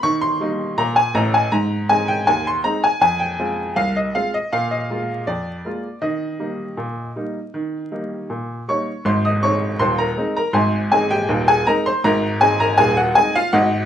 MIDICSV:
0, 0, Header, 1, 2, 480
1, 0, Start_track
1, 0, Key_signature, -4, "major"
1, 0, Tempo, 750000
1, 25, Time_signature, 2, 2, 24, 8
1, 8867, End_track
2, 0, Start_track
2, 0, Title_t, "Upright piano"
2, 0, Program_c, 0, 0
2, 20, Note_on_c, 0, 51, 91
2, 20, Note_on_c, 0, 85, 118
2, 137, Note_on_c, 0, 84, 110
2, 142, Note_off_c, 0, 85, 0
2, 157, Control_c, 0, 64, 127
2, 225, Note_off_c, 0, 51, 0
2, 259, Note_on_c, 0, 55, 61
2, 261, Note_on_c, 0, 58, 53
2, 266, Note_on_c, 0, 63, 62
2, 391, Note_off_c, 0, 55, 0
2, 393, Note_off_c, 0, 58, 0
2, 397, Note_off_c, 0, 63, 0
2, 497, Note_on_c, 0, 46, 85
2, 498, Note_on_c, 0, 82, 114
2, 499, Note_off_c, 0, 84, 0
2, 511, Control_c, 0, 64, 0
2, 614, Note_on_c, 0, 80, 103
2, 619, Note_off_c, 0, 82, 0
2, 702, Note_off_c, 0, 46, 0
2, 732, Note_on_c, 0, 33, 86
2, 735, Note_on_c, 0, 45, 88
2, 735, Note_on_c, 0, 82, 104
2, 737, Note_off_c, 0, 80, 0
2, 857, Note_off_c, 0, 82, 0
2, 858, Note_on_c, 0, 80, 99
2, 927, Note_off_c, 0, 33, 0
2, 928, Note_off_c, 0, 45, 0
2, 972, Note_on_c, 0, 44, 91
2, 972, Note_on_c, 0, 82, 101
2, 979, Note_off_c, 0, 80, 0
2, 1115, Control_c, 0, 64, 127
2, 1179, Note_off_c, 0, 44, 0
2, 1212, Note_on_c, 0, 56, 55
2, 1213, Note_on_c, 0, 80, 101
2, 1216, Note_off_c, 0, 82, 0
2, 1216, Note_on_c, 0, 60, 47
2, 1217, Note_on_c, 0, 63, 51
2, 1332, Note_on_c, 0, 79, 96
2, 1336, Note_off_c, 0, 80, 0
2, 1346, Note_off_c, 0, 56, 0
2, 1349, Note_off_c, 0, 60, 0
2, 1349, Note_off_c, 0, 63, 0
2, 1453, Note_on_c, 0, 80, 104
2, 1454, Note_on_c, 0, 39, 85
2, 1455, Note_off_c, 0, 79, 0
2, 1464, Control_c, 0, 64, 0
2, 1575, Note_off_c, 0, 80, 0
2, 1582, Note_on_c, 0, 84, 103
2, 1659, Note_off_c, 0, 39, 0
2, 1690, Note_on_c, 0, 56, 49
2, 1690, Note_on_c, 0, 82, 105
2, 1692, Note_on_c, 0, 60, 50
2, 1694, Note_on_c, 0, 63, 61
2, 1699, Note_off_c, 0, 84, 0
2, 1813, Note_off_c, 0, 82, 0
2, 1815, Note_on_c, 0, 80, 101
2, 1824, Note_off_c, 0, 56, 0
2, 1825, Note_off_c, 0, 60, 0
2, 1826, Note_off_c, 0, 63, 0
2, 1920, Note_off_c, 0, 80, 0
2, 1927, Note_on_c, 0, 41, 86
2, 1930, Note_on_c, 0, 80, 109
2, 2044, Note_on_c, 0, 79, 86
2, 2045, Control_c, 0, 64, 127
2, 2052, Note_off_c, 0, 80, 0
2, 2134, Note_off_c, 0, 41, 0
2, 2170, Note_on_c, 0, 56, 55
2, 2173, Note_on_c, 0, 60, 49
2, 2174, Note_on_c, 0, 65, 53
2, 2303, Note_off_c, 0, 56, 0
2, 2305, Note_off_c, 0, 60, 0
2, 2306, Note_off_c, 0, 65, 0
2, 2408, Note_off_c, 0, 79, 0
2, 2408, Note_on_c, 0, 36, 76
2, 2408, Note_on_c, 0, 77, 99
2, 2422, Control_c, 0, 64, 0
2, 2531, Note_off_c, 0, 77, 0
2, 2537, Note_on_c, 0, 75, 86
2, 2614, Note_off_c, 0, 36, 0
2, 2655, Note_off_c, 0, 75, 0
2, 2655, Note_on_c, 0, 56, 50
2, 2655, Note_on_c, 0, 77, 89
2, 2657, Note_on_c, 0, 60, 50
2, 2660, Note_on_c, 0, 65, 50
2, 2774, Note_off_c, 0, 77, 0
2, 2778, Note_on_c, 0, 75, 89
2, 2786, Note_off_c, 0, 56, 0
2, 2788, Note_off_c, 0, 60, 0
2, 2790, Note_off_c, 0, 65, 0
2, 2896, Note_off_c, 0, 75, 0
2, 2896, Note_on_c, 0, 46, 78
2, 2896, Note_on_c, 0, 77, 97
2, 3014, Control_c, 0, 64, 127
2, 3015, Note_off_c, 0, 77, 0
2, 3015, Note_on_c, 0, 75, 76
2, 3099, Note_off_c, 0, 46, 0
2, 3137, Note_on_c, 0, 56, 43
2, 3138, Note_on_c, 0, 58, 44
2, 3144, Note_on_c, 0, 65, 49
2, 3268, Note_off_c, 0, 56, 0
2, 3269, Note_off_c, 0, 58, 0
2, 3273, Note_off_c, 0, 65, 0
2, 3374, Note_on_c, 0, 74, 86
2, 3375, Note_off_c, 0, 75, 0
2, 3375, Note_on_c, 0, 41, 69
2, 3383, Control_c, 0, 64, 0
2, 3579, Note_off_c, 0, 41, 0
2, 3615, Note_on_c, 0, 56, 47
2, 3620, Note_on_c, 0, 58, 43
2, 3624, Note_on_c, 0, 65, 47
2, 3748, Note_off_c, 0, 56, 0
2, 3751, Note_off_c, 0, 58, 0
2, 3754, Note_off_c, 0, 65, 0
2, 3850, Note_on_c, 0, 51, 77
2, 3850, Note_on_c, 0, 75, 81
2, 3856, Note_off_c, 0, 74, 0
2, 4002, Control_c, 0, 64, 127
2, 4058, Note_off_c, 0, 51, 0
2, 4093, Note_on_c, 0, 55, 44
2, 4095, Note_on_c, 0, 58, 43
2, 4096, Note_on_c, 0, 63, 47
2, 4227, Note_off_c, 0, 55, 0
2, 4229, Note_off_c, 0, 58, 0
2, 4229, Note_off_c, 0, 63, 0
2, 4334, Note_on_c, 0, 46, 67
2, 4343, Control_c, 0, 64, 0
2, 4542, Note_off_c, 0, 46, 0
2, 4583, Note_on_c, 0, 58, 42
2, 4584, Note_on_c, 0, 55, 44
2, 4587, Note_on_c, 0, 63, 44
2, 4715, Note_off_c, 0, 58, 0
2, 4716, Note_off_c, 0, 55, 0
2, 4718, Note_off_c, 0, 63, 0
2, 4825, Note_on_c, 0, 51, 69
2, 4955, Control_c, 0, 64, 127
2, 5029, Note_off_c, 0, 51, 0
2, 5067, Note_on_c, 0, 55, 43
2, 5068, Note_on_c, 0, 63, 47
2, 5070, Note_on_c, 0, 58, 45
2, 5199, Note_off_c, 0, 55, 0
2, 5200, Note_off_c, 0, 63, 0
2, 5202, Note_off_c, 0, 58, 0
2, 5310, Control_c, 0, 64, 0
2, 5310, Note_on_c, 0, 46, 64
2, 5514, Note_off_c, 0, 46, 0
2, 5545, Note_off_c, 0, 75, 0
2, 5558, Note_on_c, 0, 55, 37
2, 5559, Note_on_c, 0, 58, 40
2, 5561, Note_on_c, 0, 85, 87
2, 5563, Note_on_c, 0, 63, 46
2, 5567, Note_on_c, 0, 73, 65
2, 5688, Note_off_c, 0, 55, 0
2, 5689, Note_off_c, 0, 58, 0
2, 5692, Note_off_c, 0, 63, 0
2, 5783, Note_off_c, 0, 73, 0
2, 5793, Note_on_c, 0, 32, 80
2, 5796, Note_off_c, 0, 85, 0
2, 5796, Note_on_c, 0, 84, 92
2, 5797, Note_on_c, 0, 44, 85
2, 5801, Note_on_c, 0, 72, 68
2, 5908, Note_off_c, 0, 72, 0
2, 5912, Control_c, 0, 64, 127
2, 5913, Note_off_c, 0, 84, 0
2, 5920, Note_on_c, 0, 87, 87
2, 5928, Note_on_c, 0, 75, 68
2, 5996, Note_off_c, 0, 32, 0
2, 5998, Note_off_c, 0, 44, 0
2, 6031, Note_off_c, 0, 75, 0
2, 6033, Note_on_c, 0, 85, 100
2, 6034, Note_on_c, 0, 56, 48
2, 6034, Note_on_c, 0, 60, 51
2, 6035, Note_off_c, 0, 87, 0
2, 6038, Note_on_c, 0, 63, 59
2, 6039, Note_on_c, 0, 73, 72
2, 6165, Note_off_c, 0, 56, 0
2, 6165, Note_off_c, 0, 60, 0
2, 6167, Note_off_c, 0, 63, 0
2, 6258, Note_off_c, 0, 73, 0
2, 6267, Note_on_c, 0, 27, 83
2, 6268, Note_on_c, 0, 84, 110
2, 6270, Note_on_c, 0, 39, 83
2, 6271, Note_off_c, 0, 85, 0
2, 6278, Control_c, 0, 64, 0
2, 6279, Note_on_c, 0, 72, 80
2, 6386, Note_off_c, 0, 72, 0
2, 6388, Note_off_c, 0, 84, 0
2, 6390, Note_on_c, 0, 82, 104
2, 6396, Note_on_c, 0, 70, 76
2, 6472, Note_off_c, 0, 27, 0
2, 6473, Note_off_c, 0, 39, 0
2, 6511, Note_on_c, 0, 56, 55
2, 6515, Note_on_c, 0, 63, 63
2, 6516, Note_on_c, 0, 60, 52
2, 6615, Note_off_c, 0, 70, 0
2, 6624, Note_off_c, 0, 82, 0
2, 6634, Note_on_c, 0, 82, 97
2, 6641, Note_on_c, 0, 70, 76
2, 6642, Note_off_c, 0, 56, 0
2, 6645, Note_off_c, 0, 60, 0
2, 6645, Note_off_c, 0, 63, 0
2, 6741, Note_on_c, 0, 32, 83
2, 6742, Note_on_c, 0, 84, 89
2, 6743, Note_on_c, 0, 44, 91
2, 6747, Note_off_c, 0, 70, 0
2, 6748, Note_on_c, 0, 72, 66
2, 6749, Note_on_c, 0, 80, 67
2, 6751, Note_off_c, 0, 82, 0
2, 6877, Control_c, 0, 64, 127
2, 6948, Note_off_c, 0, 32, 0
2, 6949, Note_off_c, 0, 44, 0
2, 6970, Note_off_c, 0, 72, 0
2, 6971, Note_off_c, 0, 80, 0
2, 6984, Note_off_c, 0, 84, 0
2, 6987, Note_on_c, 0, 80, 100
2, 6989, Note_on_c, 0, 56, 55
2, 6991, Note_on_c, 0, 60, 54
2, 6991, Note_on_c, 0, 63, 62
2, 6995, Note_on_c, 0, 68, 73
2, 7103, Note_off_c, 0, 68, 0
2, 7107, Note_off_c, 0, 80, 0
2, 7107, Note_on_c, 0, 79, 103
2, 7112, Note_on_c, 0, 67, 84
2, 7121, Note_off_c, 0, 56, 0
2, 7122, Note_off_c, 0, 60, 0
2, 7122, Note_off_c, 0, 63, 0
2, 7223, Note_on_c, 0, 39, 88
2, 7226, Note_on_c, 0, 27, 91
2, 7234, Control_c, 0, 64, 0
2, 7333, Note_off_c, 0, 67, 0
2, 7346, Note_on_c, 0, 80, 115
2, 7347, Note_off_c, 0, 79, 0
2, 7355, Note_on_c, 0, 68, 85
2, 7429, Note_off_c, 0, 39, 0
2, 7430, Note_off_c, 0, 27, 0
2, 7463, Note_off_c, 0, 68, 0
2, 7466, Note_on_c, 0, 60, 54
2, 7467, Note_off_c, 0, 80, 0
2, 7467, Note_on_c, 0, 56, 63
2, 7467, Note_on_c, 0, 82, 115
2, 7471, Note_on_c, 0, 63, 72
2, 7471, Note_on_c, 0, 70, 87
2, 7580, Note_off_c, 0, 70, 0
2, 7587, Note_off_c, 0, 82, 0
2, 7591, Note_on_c, 0, 84, 117
2, 7598, Note_off_c, 0, 60, 0
2, 7598, Note_on_c, 0, 72, 91
2, 7599, Note_off_c, 0, 56, 0
2, 7602, Note_off_c, 0, 63, 0
2, 7704, Note_off_c, 0, 72, 0
2, 7707, Note_on_c, 0, 82, 117
2, 7708, Note_on_c, 0, 32, 90
2, 7708, Note_on_c, 0, 44, 106
2, 7709, Note_off_c, 0, 84, 0
2, 7713, Note_on_c, 0, 70, 91
2, 7821, Control_c, 0, 64, 127
2, 7911, Note_off_c, 0, 32, 0
2, 7911, Note_off_c, 0, 44, 0
2, 7933, Note_off_c, 0, 70, 0
2, 7942, Note_on_c, 0, 56, 59
2, 7942, Note_on_c, 0, 80, 114
2, 7945, Note_on_c, 0, 60, 63
2, 7946, Note_off_c, 0, 82, 0
2, 7948, Note_on_c, 0, 63, 65
2, 7949, Note_on_c, 0, 68, 88
2, 8059, Note_off_c, 0, 68, 0
2, 8064, Note_off_c, 0, 80, 0
2, 8065, Note_on_c, 0, 82, 116
2, 8074, Note_on_c, 0, 70, 80
2, 8075, Note_off_c, 0, 56, 0
2, 8077, Note_off_c, 0, 60, 0
2, 8079, Note_off_c, 0, 63, 0
2, 8176, Note_on_c, 0, 39, 96
2, 8176, Note_on_c, 0, 80, 127
2, 8177, Note_on_c, 0, 27, 109
2, 8182, Note_off_c, 0, 70, 0
2, 8185, Note_off_c, 0, 82, 0
2, 8185, Note_on_c, 0, 68, 98
2, 8192, Control_c, 0, 64, 0
2, 8297, Note_off_c, 0, 68, 0
2, 8300, Note_on_c, 0, 78, 112
2, 8301, Note_off_c, 0, 80, 0
2, 8309, Note_on_c, 0, 66, 85
2, 8384, Note_off_c, 0, 39, 0
2, 8385, Note_off_c, 0, 27, 0
2, 8416, Note_on_c, 0, 56, 59
2, 8418, Note_on_c, 0, 80, 122
2, 8419, Note_off_c, 0, 66, 0
2, 8419, Note_on_c, 0, 60, 60
2, 8423, Note_off_c, 0, 78, 0
2, 8423, Note_on_c, 0, 63, 65
2, 8426, Note_on_c, 0, 68, 93
2, 8537, Note_off_c, 0, 68, 0
2, 8542, Note_off_c, 0, 80, 0
2, 8547, Note_on_c, 0, 77, 118
2, 8551, Note_off_c, 0, 56, 0
2, 8552, Note_on_c, 0, 65, 85
2, 8553, Note_off_c, 0, 60, 0
2, 8556, Note_off_c, 0, 63, 0
2, 8656, Note_on_c, 0, 78, 105
2, 8659, Note_on_c, 0, 44, 111
2, 8660, Note_off_c, 0, 65, 0
2, 8660, Note_on_c, 0, 32, 94
2, 8664, Note_on_c, 0, 66, 81
2, 8665, Note_on_c, 0, 75, 86
2, 8666, Note_off_c, 0, 77, 0
2, 8787, Control_c, 0, 64, 127
2, 8865, Note_off_c, 0, 32, 0
2, 8865, Note_off_c, 0, 44, 0
2, 8867, Note_off_c, 0, 66, 0
2, 8867, Note_off_c, 0, 75, 0
2, 8867, Note_off_c, 0, 78, 0
2, 8867, End_track
0, 0, End_of_file